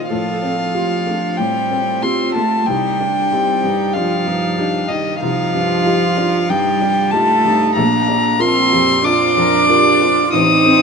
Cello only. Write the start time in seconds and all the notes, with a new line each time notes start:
0.12 F3
1.38 G3
2.03 C4
2.36 A3
2.68 G3
3.95 F3
4.89 D#3
5.20 F3
6.49 G3
7.13 A3
7.76 A#3
8.40 C4
9.05 D4
10.31 D#4